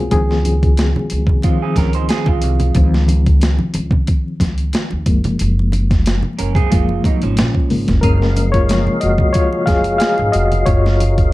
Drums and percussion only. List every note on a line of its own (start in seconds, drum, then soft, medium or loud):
0.11 kick loud
0.11 closed hi-hat medium
0.11 muted conga soft
0.31 snare soft
0.45 closed hi-hat medium
0.45 high conga medium
0.63 kick medium
0.63 closed hi-hat soft
0.77 snare loud
0.77 closed hi-hat medium
0.77 muted conga soft
0.96 high conga medium
0.96 low conga medium
1.10 closed hi-hat medium
1.27 kick loud
1.27 low conga medium
1.42 kick medium
1.42 closed hi-hat medium
1.42 muted conga soft
1.76 kick medium
1.76 snare soft
1.76 closed hi-hat medium
1.76 high conga medium
1.93 closed hi-hat soft
2.09 snare loud
2.09 closed hi-hat medium
2.26 kick medium
2.26 muted conga soft
2.42 closed hi-hat medium
2.60 closed hi-hat soft
2.60 low conga medium
2.75 kick medium
2.75 closed hi-hat medium
2.94 snare soft
2.94 muted conga soft
3.08 closed hi-hat medium
3.08 high conga medium
3.26 kick medium
3.26 closed hi-hat soft
3.41 snare loud
3.41 closed hi-hat medium
3.41 muted conga soft
3.59 muted conga soft
3.59 high conga soft
3.59 low conga medium
3.74 closed hi-hat medium
3.91 kick loud
3.91 low conga medium
4.07 kick medium
4.07 closed hi-hat medium
4.40 kick medium
4.40 snare soft
4.40 closed hi-hat medium
4.40 high conga medium
4.58 closed hi-hat soft
4.73 snare loud
4.73 closed hi-hat medium
4.73 muted conga soft
4.91 muted conga soft
5.06 kick loud
5.06 closed hi-hat medium
5.24 closed hi-hat soft
5.24 low conga medium
5.39 closed hi-hat medium
5.59 muted conga soft
5.72 closed hi-hat medium
5.72 high conga medium
5.91 kick medium
5.91 snare soft
5.91 closed hi-hat soft
6.06 snare loud
6.06 closed hi-hat medium
6.23 high conga medium
6.23 low conga medium
6.39 closed hi-hat medium
6.55 kick medium
6.55 closed hi-hat soft
6.55 low conga medium
6.72 kick medium
6.72 closed hi-hat medium
6.89 muted conga soft
7.04 kick medium
7.04 closed hi-hat medium
7.04 high conga medium
7.22 closed hi-hat soft
7.37 snare loud
7.37 closed hi-hat medium
7.37 muted conga soft
7.55 kick medium
7.70 open hi-hat soft
7.88 kick medium
7.88 snare soft
7.88 closed hi-hat soft
7.88 low conga medium
8.03 kick loud
8.03 closed hi-hat medium
8.22 snare soft
8.36 closed hi-hat medium
8.36 high conga medium
8.54 kick medium
8.54 closed hi-hat soft
8.69 snare medium
8.69 closed hi-hat medium
8.69 muted conga soft
8.87 muted conga soft
8.87 high conga soft
8.87 low conga medium
9.01 closed hi-hat medium
9.18 kick medium
9.18 low conga medium
9.34 kick loud
9.34 closed hi-hat medium
9.34 muted conga soft
9.53 muted conga soft
9.67 kick medium
9.67 snare soft
9.67 closed hi-hat medium
9.67 high conga medium
9.84 closed hi-hat soft
10.00 snare loud
10.00 closed hi-hat medium
10.00 muted conga soft
10.18 muted conga soft
10.33 closed hi-hat medium
10.52 closed hi-hat soft
10.52 low conga medium
10.66 kick loud
10.66 closed hi-hat medium
10.66 muted conga soft
10.86 snare soft
10.86 muted conga soft
11.00 closed hi-hat medium
11.00 high conga medium
11.18 kick medium
11.18 closed hi-hat soft